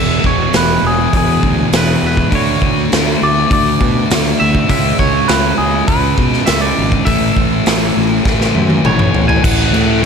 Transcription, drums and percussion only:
0.24 kick
0.53 snare, open hi-hat
1.13 kick, open hi-hat
1.43 kick
1.73 snare, open hi-hat
2.17 kick
2.32 kick, open hi-hat
2.62 kick
2.92 snare, open hi-hat
3.51 kick, open hi-hat
3.81 kick
4.11 snare, open hi-hat
4.55 kick
4.69 kick, open hi-hat
4.99 kick
5.28 snare, open hi-hat
5.88 kick, open hi-hat
6.18 kick
6.33 snare
6.46 snare, open hi-hat
6.92 kick
7.06 kick, open hi-hat
7.37 kick
7.66 snare, open hi-hat
8.25 kick, snare
8.41 snare
8.55 high tom
8.70 high tom
8.85 mid tom
8.99 mid tom
9.14 floor tom
9.29 floor tom
9.44 kick, crash
9.74 crash

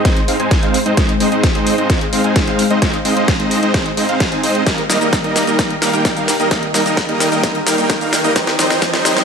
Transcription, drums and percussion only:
0.05 kick, snare, closed hi-hat
0.17 closed hi-hat
0.28 open hi-hat
0.40 closed hi-hat
0.51 kick, snare, closed hi-hat
0.63 closed hi-hat
0.74 open hi-hat
0.86 closed hi-hat
0.97 kick, snare, closed hi-hat
1.09 closed hi-hat
1.20 open hi-hat
1.32 closed hi-hat
1.44 kick, snare, closed hi-hat
1.55 closed hi-hat
1.67 open hi-hat
1.78 closed hi-hat
1.90 kick, snare, closed hi-hat
2.01 closed hi-hat
2.13 open hi-hat
2.24 closed hi-hat
2.36 kick, snare, closed hi-hat
2.47 closed hi-hat
2.59 open hi-hat
2.70 closed hi-hat
2.82 kick, snare, closed hi-hat
2.94 closed hi-hat
3.05 open hi-hat
3.17 closed hi-hat
3.28 kick, snare, closed hi-hat
3.40 closed hi-hat
3.51 open hi-hat
3.63 closed hi-hat
3.74 kick, snare, closed hi-hat
3.86 closed hi-hat
3.97 open hi-hat
4.09 closed hi-hat
4.20 kick, snare, closed hi-hat
4.32 closed hi-hat
4.43 open hi-hat
4.55 closed hi-hat
4.67 kick, snare, closed hi-hat, cabasa
4.78 closed hi-hat
4.90 snare, open hi-hat, cabasa
5.01 closed hi-hat, cabasa
5.13 kick, snare, closed hi-hat, cabasa
5.24 closed hi-hat
5.36 snare, open hi-hat, cabasa
5.47 closed hi-hat, cabasa
5.59 kick, snare, closed hi-hat, cabasa
5.70 closed hi-hat
5.82 snare, open hi-hat, cabasa
5.93 closed hi-hat, cabasa
6.05 kick, snare, closed hi-hat, cabasa
6.17 closed hi-hat, cabasa
6.28 snare, open hi-hat, cabasa
6.40 closed hi-hat, cabasa
6.51 kick, snare, closed hi-hat, cabasa
6.63 closed hi-hat
6.74 snare, open hi-hat, cabasa
6.86 closed hi-hat, cabasa
6.97 kick, snare, closed hi-hat, cabasa
7.09 closed hi-hat
7.20 snare, open hi-hat, cabasa
7.32 closed hi-hat, cabasa
7.43 kick, snare, closed hi-hat, cabasa
7.55 closed hi-hat
7.67 snare, open hi-hat, cabasa
7.78 closed hi-hat, cabasa
7.90 kick, snare, closed hi-hat, cabasa
8.01 closed hi-hat, cabasa
8.13 snare, open hi-hat, cabasa
8.24 closed hi-hat, cabasa
8.36 kick, snare, closed hi-hat, cabasa
8.47 snare, closed hi-hat
8.59 snare, open hi-hat, cabasa
8.70 snare, closed hi-hat, cabasa
8.82 kick, snare, closed hi-hat, cabasa
8.94 snare, closed hi-hat
9.05 snare, open hi-hat, cabasa
9.17 snare, closed hi-hat, cabasa

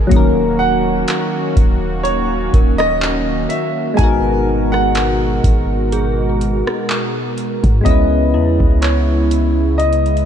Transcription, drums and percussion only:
0.11 kick, closed hi-hat
1.08 clap, closed hi-hat
1.57 kick, closed hi-hat
2.05 closed hi-hat
2.54 kick, closed hi-hat
2.80 cross-stick
3.02 clap
3.50 closed hi-hat
3.99 kick, closed hi-hat
4.74 cross-stick
4.95 clap, closed hi-hat
5.44 kick, closed hi-hat
5.92 closed hi-hat
6.41 closed hi-hat
6.67 cross-stick
6.90 clap
7.38 closed hi-hat
7.64 kick, closed hi-hat
7.86 kick, closed hi-hat
8.60 kick
8.82 clap, closed hi-hat
9.31 closed hi-hat
9.80 closed hi-hat
9.93 closed hi-hat
10.06 closed hi-hat
10.17 closed hi-hat

